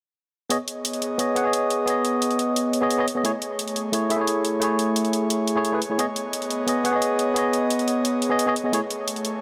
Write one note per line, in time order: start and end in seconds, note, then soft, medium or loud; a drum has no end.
0.49 0.56 B3 medium
0.49 3.22 B3 medium
0.49 0.56 G#4 medium
0.49 3.22 G#4 medium
0.49 8.69 C#5 medium
0.49 0.56 C#5 medium
0.49 3.22 D#5 medium
0.49 0.57 D#5 medium
0.49 closed hi-hat medium
0.68 closed hi-hat medium
0.85 closed hi-hat medium
0.93 closed hi-hat soft
1.02 closed hi-hat medium
1.18 1.34 B3 medium
1.18 1.34 G#4 medium
1.18 1.34 C#5 medium
1.18 1.35 D#5 medium
1.18 closed hi-hat medium
1.35 1.41 B3 medium
1.35 1.43 G#4 medium
1.35 1.43 C#5 medium
1.35 1.43 F#5 medium
1.35 closed hi-hat medium
1.42 1.84 B3 medium
1.42 1.85 G#4 medium
1.42 1.86 C#5 medium
1.47 1.87 D#5 medium
1.53 closed hi-hat medium
1.70 closed hi-hat medium
1.85 2.79 B3 medium
1.85 2.80 G#4 medium
1.85 2.80 C#5 medium
1.85 closed hi-hat medium
1.90 2.81 D#5 loud
2.05 closed hi-hat medium
2.22 closed hi-hat medium
2.31 closed hi-hat soft
2.39 closed hi-hat medium
2.56 closed hi-hat medium
2.73 closed hi-hat medium
2.81 2.97 B3 medium
2.81 2.97 G#4 medium
2.81 2.97 C#5 medium
2.81 2.98 D#5 loud
2.90 closed hi-hat medium
2.98 3.04 B3 medium
2.98 3.05 G#4 medium
2.98 3.05 C#5 medium
2.98 3.05 D#5 loud
3.08 closed hi-hat medium
3.15 3.22 B3 medium
3.15 3.22 G#4 medium
3.15 3.23 C#5 medium
3.15 3.23 D#5 medium
3.23 3.30 A3 medium
3.23 5.96 A3 medium
3.23 3.30 E4 medium
3.23 9.41 G#4 medium
3.23 3.31 G#4 medium
3.23 3.31 C#5 loud
3.23 closed hi-hat medium
3.42 closed hi-hat medium
3.59 closed hi-hat medium
3.68 closed hi-hat soft
3.76 closed hi-hat medium
3.92 4.08 A3 medium
3.92 4.08 E4 medium
3.92 4.09 G#4 medium
3.92 4.09 C#5 medium
3.92 closed hi-hat medium
4.09 4.15 A3 medium
4.09 4.17 E4 medium
4.09 4.17 G#4 medium
4.09 4.18 E5 medium
4.09 closed hi-hat medium
4.17 4.59 A3 medium
4.17 4.59 E4 medium
4.17 4.60 G#4 medium
4.21 4.61 C#5 medium
4.27 closed hi-hat medium
4.45 closed hi-hat medium
4.60 5.53 A3 medium
4.60 5.54 E4 medium
4.60 5.55 G#4 medium
4.60 closed hi-hat medium
4.64 5.55 C#5 loud
4.79 closed hi-hat medium
4.96 closed hi-hat medium
5.05 closed hi-hat soft
5.13 closed hi-hat medium
5.30 closed hi-hat medium
5.47 closed hi-hat medium
5.55 5.71 A3 medium
5.55 5.71 E4 medium
5.55 5.71 G#4 medium
5.55 5.72 C#5 loud
5.65 closed hi-hat medium
5.72 5.79 A3 medium
5.72 5.79 E4 medium
5.72 5.79 G#4 medium
5.72 5.80 B4 loud
5.82 closed hi-hat medium
5.89 5.96 A3 medium
5.89 5.97 E4 medium
5.89 5.97 G#4 medium
5.89 5.98 C#5 medium
5.98 6.04 B3 medium
5.98 8.71 B3 medium
5.98 6.05 G#4 medium
5.98 6.05 C#5 medium
5.98 8.71 D#5 medium
5.98 6.05 D#5 loud
5.98 closed hi-hat medium
6.16 closed hi-hat medium
6.33 closed hi-hat medium
6.42 closed hi-hat soft
6.50 closed hi-hat medium
6.67 6.82 B3 medium
6.67 6.83 G#4 medium
6.67 6.83 C#5 medium
6.67 6.83 D#5 medium
6.67 closed hi-hat medium
6.84 6.90 B3 medium
6.84 6.91 G#4 medium
6.84 6.92 C#5 medium
6.84 6.92 F#5 medium
6.84 closed hi-hat medium
6.91 7.33 B3 medium
6.91 7.34 G#4 medium
6.91 7.35 C#5 medium
6.96 7.35 D#5 medium
7.02 closed hi-hat medium
7.19 closed hi-hat medium
7.34 8.27 B3 medium
7.34 8.28 G#4 medium
7.34 8.29 C#5 medium
7.34 closed hi-hat medium
7.39 8.30 D#5 loud
7.53 closed hi-hat medium
7.70 closed hi-hat medium
7.79 closed hi-hat soft
7.88 closed hi-hat medium
8.05 closed hi-hat medium
8.22 closed hi-hat medium
8.29 8.45 B3 medium
8.29 8.45 G#4 medium
8.29 8.46 C#5 medium
8.29 8.46 D#5 loud
8.39 closed hi-hat medium
8.46 8.53 B3 medium
8.46 8.53 G#4 medium
8.46 8.54 C#5 medium
8.46 8.54 D#5 loud
8.56 closed hi-hat medium
8.64 8.71 B3 medium
8.64 8.71 G#4 medium
8.64 8.72 C#5 medium
8.64 8.72 D#5 medium
8.72 8.79 A3 medium
8.72 9.41 A3 medium
8.72 8.79 E4 medium
8.72 8.79 G#4 medium
8.72 9.41 C#5 medium
8.72 8.80 C#5 loud
8.72 closed hi-hat medium
8.90 closed hi-hat medium
9.08 closed hi-hat medium
9.16 closed hi-hat soft
9.25 closed hi-hat medium